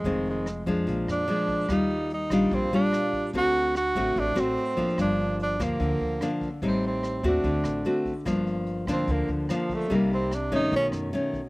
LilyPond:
<<
  \new Staff \with { instrumentName = "Tenor saxophone" } { \time 4/4 \key g \minor \tempo 4 = 146 aes8 aes4 r4 d'4. | ees'4 ees'4 c'8 d'4. | fis'4 fis'4 d'8 c'4. | d'4 d'8 bes2 r8 |
c'8 c'4 d'2 r8 | r4. c'8 bes8 d8 f8 a8 | bes8 c'8 d'8 ees'8 cis'8 r4. | }
  \new Staff \with { instrumentName = "Nylon-string guitar" } { \time 4/4 \key g \minor << { <ees aes c'>4 r8 <f aes d'>4. <f aes d'>4 | <g f'>4 r8 <g d' f'>4 <g d' f'>4. | <a c' fis'>4 r8 <a c' fis'>4 <a c' fis'>4 <f bes d'>8~ | <f bes d'>4. <f bes d'>4. <f bes d'>8 r8 |
<g c' ees'>4. <a c' fis'>4. <a c' fis'>8 r8 | <f bes d'>4. <f bes d'>4. <f bes d'>4 | <g bes ees'>4 r8 <ees a cis'>4. <dis a cis'>8 r8 | } \\ { f,2 bes,2 | ees2 bes,2 | d2 a,2 | g,2 d2 |
a,2 d2 | g,2 d2 | c2 b,2 | } >> }
  \new Staff \with { instrumentName = "Upright bass" } { \clef bass \time 4/4 \key g \minor f,,4. f,8 bes,,8 f,8 r4 | ees,4. bes,,8 bes,,8 bes,,8 r4 | d,4. a,,8 a,,8 a,,8 r4 | g,,4. d,8 d,8 d,8 r4 |
a,,4. ees,8 d,8 a,,8 r4 | g,,4. d,8 d,8 d,8 r4 | c,4. g,8 b,,8 fis,8 r4 | }
  \new DrumStaff \with { instrumentName = "Drums" } \drummode { \time 4/4 <hh bd>8 hh8 <hh ss>8 <hh bd>8 <hh bd>8 <hh ss>8 hh8 <hh bd>8 | <hh bd ss>8 hh8 hh8 <hh bd ss>8 <hh bd>8 hh8 <hh ss>8 <hh bd>8 | <hh bd>8 hh8 <hh ss>8 <hh bd>8 <hh bd>8 <hh ss>8 hh8 <hh bd>8 | <hh bd ss>8 hh8 hh8 <hh bd ss>8 <hh bd>8 hh8 <hh ss>8 <hh bd>8 |
<hh bd>8 hh8 <hh ss>8 <hh bd>8 <hh bd>8 <hh ss>8 hh8 <hh bd>8 | <hh bd ss>8 hh8 hh8 <hh bd ss>8 <hh bd>8 hh8 <hh ss>8 <hh bd>8 | <hh bd>8 hh8 <hh ss>8 <hh bd>8 <hh bd>8 <hh ss>8 hh8 <hh bd>8 | }
>>